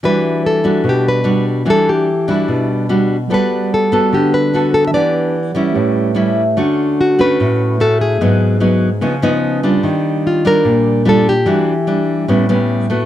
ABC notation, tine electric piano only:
X:1
M:4/4
L:1/8
Q:1/4=147
K:Edor
V:1 name="Tine electric piano"
z8 | z8 | [G,ABdf]8 | [E,GBdf]4 [A,GBce]4 |
z8 | z8 | z8 | z8 |]